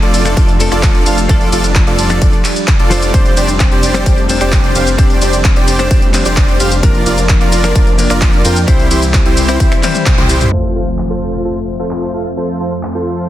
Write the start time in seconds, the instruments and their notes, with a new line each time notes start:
Already playing: clean electric guitar F3 A3 D4 A4, analog synth pad F3 A3 D4
0.02 detuned saw bass F1, supersaw synth F4 A4 D5, closed hi-hat
0.14 open hi-hat, ride, shaker
0.25 clean electric guitar F3 A3 D4 A4, finger snap, closed hi-hat, shaker
0.37 detuned saw bass F1, supersaw synth F4 A4 D5, kick, closed hi-hat, ride, shaker
0.49 closed hi-hat
0.59 clean electric guitar F3 A3 D4 A4, open hi-hat, ride, shaker
0.72 detuned saw bass F1, supersaw synth F4 A4 D5, finger snap, closed hi-hat, shaker
0.83 kick, clap, closed hi-hat, ride, shaker
0.95 closed hi-hat
1.06 detuned saw bass F1, supersaw synth F4 A4 F5, open hi-hat, ride, shaker
1.18 closed hi-hat, shaker
1.28 detuned saw bass F1, clean electric guitar F3 A3 D4 A4, analog synth pad G3, supersaw synth F4 A4 D5, kick, closed hi-hat, ride, shaker
1.41 open hi-hat
1.52 detuned saw bass F1, supersaw synth F4 A4 D5, open hi-hat, ride, shaker
1.64 closed hi-hat, shaker
1.75 kick, clap, closed hi-hat, ride, shaker
1.87 detuned saw bass F1, supersaw synth F4 A4 D5, closed hi-hat
1.99 open hi-hat, ride, shaker
2.10 clean electric guitar F3 A3 D4 A4, finger snap, closed hi-hat, shaker
2.22 detuned saw bass F1, supersaw synth F4 A4 D5, kick, closed hi-hat, ride, shaker
2.33 closed hi-hat
2.44 clap, open hi-hat, ride, shaker
2.56 closed hi-hat, shaker
2.68 kick, clap, closed hi-hat, ride, shaker
2.79 detuned saw bass F1, supersaw synth F4 A4 D5, closed hi-hat
2.90 clean electric guitar F3 A3 D4 C5, open hi-hat, ride, shaker
3.02 closed hi-hat, shaker
3.13 detuned saw bass F1, clean electric guitar G3 C4 D4 C5, analog synth pad C4 D4, supersaw synth G4 C5 D5, kick, closed hi-hat, ride, shaker
3.26 closed hi-hat
3.37 detuned saw bass F1, supersaw synth G4 C5 D5, open hi-hat, ride, shaker
3.49 closed hi-hat, shaker
3.60 kick, clap, closed hi-hat, ride, shaker
3.72 detuned saw bass F1, supersaw synth G4 C5 D5, closed hi-hat
3.83 open hi-hat, ride, shaker
3.94 clean electric guitar G3 C4 D4 C5, finger snap, closed hi-hat, shaker
4.06 detuned saw bass F1, supersaw synth G4 C5 D5, kick, closed hi-hat, ride, shaker
4.18 closed hi-hat
4.28 clean electric guitar G3 C4 D4 C5, open hi-hat, ride, shaker
4.41 detuned saw bass F1, supersaw synth G4 C5 D5, finger snap, closed hi-hat, shaker
4.52 kick, clap, closed hi-hat, ride, shaker
4.64 closed hi-hat
4.75 detuned saw bass F1, supersaw synth G4 C5 F5, open hi-hat, ride, shaker
4.87 closed hi-hat, shaker
4.97 detuned saw bass F1, clean electric guitar G3 C4 D4 C5, supersaw synth G4 C5 D5, kick, closed hi-hat, ride, shaker
5.10 open hi-hat
5.22 detuned saw bass F1, supersaw synth G4 C5 D5, open hi-hat, ride, shaker
5.33 closed hi-hat, shaker
5.44 kick, clap, closed hi-hat, ride, shaker
5.56 detuned saw bass F1, supersaw synth G4 C5 D5, closed hi-hat
5.68 open hi-hat, ride, shaker
5.79 clean electric guitar G3 C4 D4 C5, finger snap, closed hi-hat, shaker
5.91 detuned saw bass F1, supersaw synth G4 C5 D5, kick, closed hi-hat, ride, shaker
6.02 closed hi-hat
6.13 clean electric guitar G3 C4 D4 C5, clap, open hi-hat, ride, shaker
6.25 detuned saw bass F1, supersaw synth G4 C5 D5, closed hi-hat, shaker
6.37 kick, clap, closed hi-hat, ride, shaker
6.49 closed hi-hat
6.60 detuned saw bass F1, supersaw synth G4 C5 F5, open hi-hat, ride, shaker
6.72 closed hi-hat, shaker
6.82 detuned saw bass F1, clean electric guitar F3 A#3 D4 A#4, analog synth pad F3 A#3 D4, supersaw synth F4 A#4 D5, kick, closed hi-hat, ride, shaker
6.95 closed hi-hat
7.06 detuned saw bass F1, supersaw synth F4 A#4 D5, open hi-hat, ride, shaker
7.18 closed hi-hat, shaker
7.29 kick, clap, closed hi-hat, ride, shaker
7.41 detuned saw bass F1, supersaw synth F4 A#4 D5, closed hi-hat
7.52 open hi-hat, ride, shaker
7.63 clean electric guitar F3 A#3 D4 A#4, finger snap, closed hi-hat, shaker
7.75 detuned saw bass F1, supersaw synth F4 A#4 D5, kick, closed hi-hat, ride, shaker
7.87 closed hi-hat
7.97 clean electric guitar F3 A#3 D4 A#4, open hi-hat, ride, shaker
8.10 detuned saw bass F1, supersaw synth F4 A#4 D5, finger snap, closed hi-hat, shaker
8.21 kick, clap, closed hi-hat, ride, shaker
8.33 closed hi-hat
8.45 detuned saw bass F2, supersaw synth F4 A#4 G5, open hi-hat, ride, shaker
8.56 closed hi-hat, shaker
8.67 detuned saw bass C2, analog synth pad E3 G3 C4, clean electric guitar G3 C4 E4 C5, supersaw synth E4 G4 C5, kick, closed hi-hat, ride, shaker
8.79 open hi-hat
8.91 detuned saw bass C2, supersaw synth E4 G4 C5, open hi-hat, ride, shaker
9.02 closed hi-hat, shaker
9.14 kick, clap, closed hi-hat, ride, shaker
9.26 detuned saw bass C2, supersaw synth E4 G4 C5, closed hi-hat
9.37 open hi-hat, ride, shaker
9.48 clean electric guitar G3 C4 E4 C5, finger snap, closed hi-hat, shaker
9.60 detuned saw bass C2, supersaw synth E4 G4 C5, kick, closed hi-hat, ride, shaker
9.72 finger snap, closed hi-hat
9.82 clean electric guitar G3 C4 E4 C5, clap, open hi-hat, high tom, ride, shaker
9.95 closed hi-hat, high tom, shaker
10.06 kick, clap, closed hi-hat, mid tom, ride, shaker
10.18 detuned saw bass C2, supersaw synth E4 G4 C5, closed hi-hat, mid tom
10.29 open hi-hat, ride, shaker
10.41 closed hi-hat, mid tom, shaker
10.51 analog synth pad F2 F3 A3 C4 C5, clean electric guitar A3 C4 F4 C5, supersaw synth F4 A4 C5, impact
10.76 supersaw synth F4 A4 C5
10.98 clap
11.10 supersaw synth F4 A4 C5
11.45 supersaw synth F4 A4 C5
11.79 supersaw synth F4 A4 C5
11.91 clap
12.14 supersaw synth F4 A4 F5
12.37 supersaw synth F4 A4 C5
12.60 supersaw synth F4 A4 C5
12.83 clap
12.95 supersaw synth F4 A4 C5